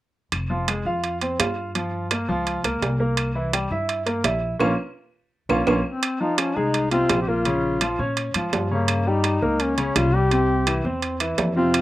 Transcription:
0.32 0.82 F1 medium
0.32 high timbale medium
0.32 claves medium
0.50 0.65 F3 medium
0.50 0.65 F4 medium
0.68 0.83 G#3 medium
0.68 0.83 G#4 medium
0.68 high timbale medium
0.68 low timbale medium
0.68 claves medium
0.85 1.35 F2 medium
0.85 1.15 F4 medium
0.85 1.15 F5 medium
1.04 high timbale medium
1.21 1.36 C4 medium
1.21 1.36 C5 medium
1.21 high timbale medium
1.39 2.23 G2 medium
1.39 1.69 F4 medium
1.39 1.69 F5 medium
1.39 high timbale medium
1.39 low timbale medium
1.39 claves medium
1.75 2.04 F3 medium
1.75 2.05 F4 medium
1.75 high timbale medium
2.11 2.25 A#3 medium
2.11 2.26 A#4 medium
2.11 high timbale medium
2.11 low timbale medium
2.11 claves medium
2.28 2.62 C#2 medium
2.28 2.58 F3 medium
2.28 2.58 F4 medium
2.47 high timbale medium
2.63 2.80 C#2 medium
2.63 2.94 A#3 medium
2.63 2.94 A#4 medium
2.63 high timbale medium
2.63 claves medium
2.82 3.65 C2 medium
2.82 high timbale medium
2.82 low timbale medium
3.00 3.29 A#3 medium
3.00 3.29 A#4 medium
3.17 high timbale medium
3.17 claves medium
3.35 3.50 E3 medium
3.35 3.50 E4 medium
3.53 3.68 G3 medium
3.53 3.68 G4 medium
3.53 high timbale medium
3.53 low timbale medium
3.53 claves medium
3.71 4.21 G2 medium
3.71 4.00 E4 medium
3.71 4.01 E5 medium
3.89 high timbale medium
4.06 4.21 A#3 medium
4.06 4.21 A#4 medium
4.06 high timbale medium
4.24 4.58 A#1 medium
4.24 4.54 E4 medium
4.24 4.54 E5 medium
4.24 high timbale medium
4.24 low timbale medium
4.24 claves medium
4.59 4.73 A#1 medium
4.59 4.71 A#3 medium
4.59 4.71 C#4 medium
4.59 4.71 F4 medium
4.59 high timbale medium
4.59 claves medium
5.49 5.63 A#1 medium
5.49 5.61 A#3 medium
5.49 5.61 C#4 medium
5.49 5.61 F4 medium
5.49 high timbale medium
5.49 claves medium
5.67 5.80 A#1 medium
5.67 5.79 A#3 medium
5.67 5.79 C#4 medium
5.67 5.79 F4 medium
5.67 high timbale medium
5.67 claves medium
5.85 6.19 C4 medium
6.03 high timbale medium
6.03 claves medium
6.20 6.50 F3 medium
6.20 6.39 D#4 medium
6.20 6.50 F4 medium
6.38 6.57 C#4 medium
6.38 high timbale medium
6.38 low timbale medium
6.38 claves medium
6.56 7.06 C2 medium
6.56 6.86 G#3 medium
6.56 6.90 D#4 medium
6.56 6.86 G#4 medium
6.74 high timbale medium
6.91 7.21 C3 medium
6.91 7.21 C4 medium
6.91 7.18 F4 loud
6.91 high timbale medium
7.09 7.94 A#1 medium
7.09 high timbale medium
7.09 low timbale medium
7.09 claves medium
7.22 7.29 G4 medium
7.28 7.43 A#3 medium
7.28 7.99 F4 medium
7.28 7.43 A#4 medium
7.45 7.75 C#3 medium
7.45 7.75 C#4 medium
7.45 high timbale medium
7.81 7.96 F3 medium
7.81 7.96 F4 medium
7.81 high timbale medium
7.81 low timbale soft
7.81 claves medium
7.99 8.32 A#2 medium
7.99 8.29 C#4 medium
7.99 8.29 C#5 medium
8.17 high timbale medium
8.34 8.52 G#2 medium
8.34 8.65 F3 medium
8.34 8.65 F4 medium
8.34 high timbale medium
8.34 claves medium
8.52 9.36 G2 medium
8.52 high timbale medium
8.52 low timbale medium
8.71 9.00 C#3 medium
8.71 9.10 A#3 medium
8.71 9.01 C#4 medium
8.88 high timbale medium
8.88 claves medium
9.07 9.36 G3 medium
9.07 9.63 D#4 medium
9.07 9.36 G4 medium
9.24 high timbale medium
9.24 low timbale medium
9.24 claves medium
9.42 9.92 C#2 medium
9.42 9.71 A#3 medium
9.42 9.72 A#4 medium
9.60 9.98 C#4 medium
9.60 high timbale medium
9.78 10.07 C#3 medium
9.78 10.07 C#4 medium
9.78 high timbale medium
9.96 10.79 C2 medium
9.96 10.16 F4 loud
9.96 high timbale medium
9.96 low timbale medium
9.96 claves medium
10.14 10.28 G3 medium
10.14 10.29 G4 medium
10.14 10.85 G4 medium
10.31 10.60 C3 medium
10.31 10.61 C4 medium
10.31 high timbale medium
10.67 10.82 E3 medium
10.67 10.82 E4 medium
10.67 high timbale medium
10.67 low timbale medium
10.67 claves medium
10.84 11.35 E2 medium
10.84 11.14 C4 medium
10.84 11.14 C5 medium
11.02 high timbale medium
11.20 11.50 E3 medium
11.20 11.50 E4 medium
11.20 high timbale medium
11.20 claves medium
11.38 11.81 F2 medium
11.38 high timbale medium
11.38 low timbale medium
11.57 11.81 C3 medium
11.57 11.81 C4 medium
11.57 11.81 F4 medium
11.74 high timbale medium
11.74 claves medium

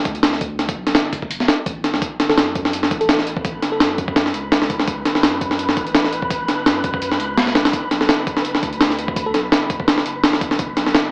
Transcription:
0.05 0.75 D2 loud
0.05 kick loud
0.05 closed hi-hat medium
0.15 closed hi-hat soft
0.23 snare loud
0.23 closed hi-hat medium
0.33 snare soft
0.41 kick loud
0.41 closed hi-hat medium
0.59 snare soft
0.59 closed hi-hat medium
0.69 kick loud
0.69 closed hi-hat medium
0.77 0.93 B1 loud
0.87 snare soft
0.87 closed hi-hat medium
0.95 1.47 F#1 medium
0.95 snare loud
0.95 closed hi-hat medium
1.13 kick loud
1.13 closed hi-hat medium
1.22 kick medium
1.31 closed hi-hat medium
1.40 snare soft
1.48 snare loud
1.48 closed hi-hat medium
1.66 1.85 A1 loud
1.66 kick loud
1.66 closed hi-hat medium
1.84 1.95 F#1 medium
1.84 snare soft
1.84 closed hi-hat medium
1.93 2.01 D2 loud
1.93 snare soft
2.02 11.11 B4 medium
2.02 11.11 B5 medium
2.02 kick loud
2.02 closed hi-hat medium
2.19 2.36 F#1 loud
2.19 snare medium
2.19 closed hi-hat medium
2.29 2.51 A4 medium
2.29 snare medium
2.37 2.92 F#2 medium
2.37 snare loud
2.37 closed hi-hat medium
2.55 kick loud
2.55 closed hi-hat medium
2.65 snare medium
2.73 closed hi-hat medium
2.83 snare medium
2.91 3.61 A1 loud
2.91 kick medium
2.91 closed hi-hat medium
3.01 3.22 A4 medium
3.01 closed hi-hat soft
3.09 snare loud
3.09 closed hi-hat medium
3.19 snare soft
3.27 closed hi-hat medium
3.37 kick loud
3.45 kick loud
3.45 closed hi-hat medium
3.62 3.79 F#1 loud
3.62 snare soft
3.62 closed hi-hat medium
3.72 3.98 A4 medium
3.80 4.33 F#2 medium
3.80 snare loud
3.80 closed hi-hat medium
3.98 kick loud
3.98 closed hi-hat medium
4.08 kick loud
4.16 snare loud
4.16 closed hi-hat medium
4.26 snare soft
4.34 5.04 C#2 loud
4.34 closed hi-hat medium
4.52 snare loud
4.52 closed hi-hat medium
4.62 snare medium
4.70 kick medium
4.70 closed hi-hat medium
4.79 snare medium
4.87 kick loud
4.87 closed hi-hat medium
5.05 5.22 F#1 loud
5.05 snare medium
5.05 closed hi-hat medium
5.15 snare medium
5.23 5.78 F#2 medium
5.23 snare loud
5.23 closed hi-hat medium
5.41 kick medium
5.41 closed hi-hat medium
5.51 snare medium
5.59 closed hi-hat medium
5.69 snare medium
5.77 6.47 A1 loud
5.77 kick loud
5.77 closed hi-hat medium
5.87 closed hi-hat soft
5.95 snare loud
5.95 closed hi-hat medium
6.04 snare soft
6.13 closed hi-hat medium
6.22 kick loud
6.30 kick loud
6.30 closed hi-hat medium
6.48 6.64 F#1 loud
6.48 snare soft
6.48 closed hi-hat medium
6.66 7.18 F#2 medium
6.66 snare loud
6.66 closed hi-hat medium
6.84 kick loud
6.84 closed hi-hat medium
6.94 kick loud
7.02 closed hi-hat medium
7.12 snare soft
7.20 7.72 C#2 loud
7.20 closed hi-hat medium
7.38 snare loud
7.38 closed hi-hat medium
7.47 snare medium
7.55 snare loud
7.55 closed hi-hat medium
7.65 snare loud
7.65 closed hi-hat medium
7.73 kick loud
7.73 closed hi-hat medium
7.91 8.07 B1 loud
7.91 snare medium
7.91 closed hi-hat medium
8.01 8.22 A4 medium
8.01 snare medium
8.09 8.64 F#1 medium
8.09 snare loud
8.09 closed hi-hat medium
8.27 kick loud
8.27 closed hi-hat medium
8.37 snare medium
8.45 closed hi-hat medium
8.55 snare medium
8.63 9.33 D2 loud
8.63 kick medium
8.63 closed hi-hat medium
8.73 closed hi-hat soft
8.81 snare loud
8.81 closed hi-hat medium
8.90 snare soft
8.99 closed hi-hat medium
9.08 kick loud
9.16 kick loud
9.16 closed hi-hat medium
9.26 9.31 A4 medium
9.34 9.50 B1 loud
9.34 9.40 A4 medium
9.34 snare soft
9.34 closed hi-hat medium
9.52 10.04 F#1 medium
9.52 snare loud
9.52 closed hi-hat medium
9.70 kick loud
9.70 closed hi-hat medium
9.80 kick loud
9.88 snare loud
9.88 closed hi-hat medium
9.98 snare medium
10.05 10.76 F#1 loud
10.05 closed hi-hat medium
10.23 snare loud
10.23 closed hi-hat medium
10.33 snare medium
10.41 kick medium
10.41 closed hi-hat medium
10.51 snare medium
10.59 kick loud
10.59 closed hi-hat medium
10.77 10.93 B1 loud
10.77 snare medium
10.77 closed hi-hat medium
10.87 snare soft
10.95 11.11 F#1 medium
10.95 snare loud
10.95 closed hi-hat medium

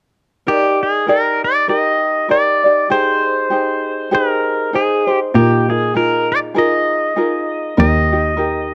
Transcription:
0.47 1.08 D#4 medium
0.47 0.84 G4 medium
0.47 1.05 A#4 medium
0.47 1.08 D5 medium
0.83 1.10 G#4 medium
1.07 1.68 D#4 soft
1.07 1.69 G4 soft
1.07 1.67 A#4 soft
1.07 1.41 A#4 medium
1.07 1.68 D5 medium
1.44 1.69 D5 medium
1.68 2.29 D#4 medium
1.68 2.29 G4 medium
1.68 2.27 A#4 medium
1.68 2.31 D#5 medium
2.29 2.65 D#4 soft
2.29 2.64 G4 soft
2.29 2.64 A#4 soft
2.29 2.63 D5 medium
2.29 2.91 D5 medium
2.64 2.89 D#4 soft
2.64 2.89 G4 soft
2.64 2.91 D5 soft
2.90 3.51 D#4 medium
2.90 3.49 G4 medium
2.90 3.52 G#4 medium
2.90 3.51 C5 medium
2.90 4.17 C5 medium
3.50 4.11 D#4 medium
3.50 4.10 G4 medium
3.50 4.12 G#4 medium
3.50 4.11 C5 soft
4.11 4.73 D#4 medium
4.11 4.73 G4 medium
4.11 4.74 G#4 medium
4.11 4.76 A#4 medium
4.11 4.73 C5 medium
4.73 5.08 D#4 medium
4.73 5.07 G#4 medium
4.73 5.19 G#4 medium
4.73 5.06 C5 medium
5.07 5.33 D#4 soft
5.07 5.34 G#4 soft
5.07 5.34 C5 soft
5.34 7.74 A#2 medium
5.34 5.69 D#4 medium
5.34 5.68 F4 medium
5.34 5.71 G4 medium
5.34 5.67 A#4 medium
5.68 5.94 D#4 soft
5.68 5.94 F4 soft
5.68 5.96 G#4 medium
5.68 5.94 A#4 soft
5.94 6.55 D#4 medium
5.94 6.55 F4 medium
5.94 6.53 G#4 soft
5.94 6.56 A#4 medium
5.94 6.32 A#4 medium
6.32 6.39 D5 medium
6.54 7.16 D#4 medium
6.54 7.16 F4 medium
6.54 7.15 G#4 medium
6.54 7.17 A#4 medium
6.54 7.79 D#5 medium
7.16 7.77 D#4 medium
7.16 7.78 F4 medium
7.16 7.77 G#4 medium
7.16 7.77 A#4 medium
7.77 8.74 D#2 medium
7.77 8.12 D#4 medium
7.77 8.11 G4 medium
7.77 8.12 A#4 medium
7.77 8.74 D#5 medium
8.12 8.36 D#4 soft
8.12 8.36 G4 soft
8.37 8.74 D#4 medium
8.37 8.74 G4 soft
8.37 8.74 A#4 soft

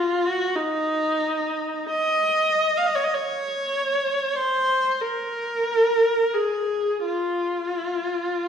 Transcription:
0.00 0.23 F4 medium
0.26 0.56 F#4 medium
0.56 1.90 D#4 medium
1.90 2.76 D#5 medium
2.77 2.86 F5 medium
2.86 2.95 D#5 medium
2.95 3.04 C#5 medium
3.04 3.13 D#5 medium
3.14 4.35 C#5 medium
4.36 5.00 C5 medium
5.01 6.33 A#4 medium
6.33 7.05 G#4 medium
7.06 8.48 F4 medium

